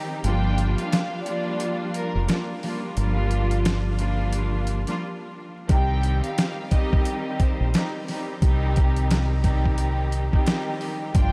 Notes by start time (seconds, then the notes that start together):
Already playing: D#3 G3 C4 D#4 G4
0.24 G1 F3 G3 A#3 D4 F4 G5, closed hi-hat
0.58 closed hi-hat
0.78 F5, closed hi-hat
0.93 snare, closed hi-hat
1.24 F3 G3 A#3 D4 F4 D5, closed hi-hat
1.60 closed hi-hat
1.94 A#4, closed hi-hat
2.15 F1
2.27 F3 G3 A#3 D4 F4, snare, closed hi-hat
2.63 F3 G3 A#3 D4 F4, snare, open hi-hat
2.97 G1 F3 G3 A#3 D4 F4, closed hi-hat
3.31 closed hi-hat
3.51 closed hi-hat
3.65 snare, closed hi-hat
3.98 F3 G3 A#3 D4 F4, closed hi-hat
4.33 closed hi-hat
4.67 closed hi-hat
4.87 F3 G3 A#3 D4 F4, snare, closed hi-hat
5.68 C2 D#3 G3 C4 D#4 G4, kick, closed hi-hat
5.73 G5
6.03 closed hi-hat
6.24 F5, closed hi-hat
6.38 snare, closed hi-hat
6.71 D#3 G3 C4 D#4 G4 D#5, kick, closed hi-hat
6.93 kick
7.05 closed hi-hat
7.40 C5, kick, closed hi-hat
7.61 A#1
7.74 D#3 G3 C4 D#4 G4, snare, closed hi-hat
8.08 D#3 G3 C4 D#4 G4, snare, open hi-hat
8.41 C2 D#3 G3 C4 D#4 G4, kick, closed hi-hat
8.76 kick, closed hi-hat
8.96 closed hi-hat
9.11 snare, closed hi-hat
9.43 D#3 G3 C4 D#4 G4, kick, closed hi-hat
9.66 kick
9.78 closed hi-hat
10.12 closed hi-hat
10.31 D#3 G3 C4 D#4 G4, kick
10.46 snare, closed hi-hat
10.81 open hi-hat
11.14 G1 F3 G3 A#3 D4 F4 G5, kick, closed hi-hat